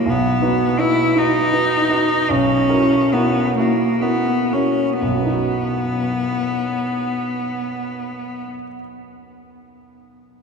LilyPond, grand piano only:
\new Staff \with { instrumentName = "Grand piano" } { \time 6/8 \key b \major \tempo 4. = 44 b,,8 <dis' fis' b'>8 <dis' fis' b'>8 <dis' fis' b'>8 <dis' fis' b'>8 <dis' fis' b'>8 | b,,8 <e' fis' ais'>8 <e' fis' ais'>8 <e' fis' ais'>8 <e' fis' ais'>8 <e' fis' ais'>8 | <b,, fis, fis b dis' fis'>2.~ | <b,, fis, fis b dis' fis'>2. | }